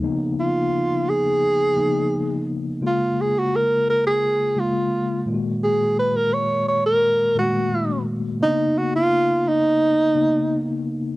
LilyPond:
<<
  \new Staff \with { instrumentName = "Tenor saxophone" } { \time 4/4 \key des \mixolydian \tempo 4 = 86 r8 f'4 aes'2 r8 | f'8 aes'16 ges'16 bes'8 bes'16 aes'8. f'4 r8 | aes'8 ces''16 bes'16 des''8 des''16 bes'8. ges'4 r8 | dis'8 fis'16 f'8. dis'2 r8 | }
  \new Staff \with { instrumentName = "Tine electric piano" } { \time 4/4 \key des \mixolydian <des f bes ces' ees'>4. r4 <des f bes ces' ees'>4 r8 | <des aes bes f'>4. r4 <des aes bes f'>4 <bes, ees aes bes f' ges'>8~ | <bes, ees aes bes f' ges'>4 r4. <bes, ees aes a bes ges'>4 r8 | <cis ais b d' dis'>4. r4 <cis ais b dis'>4 r8 | }
>>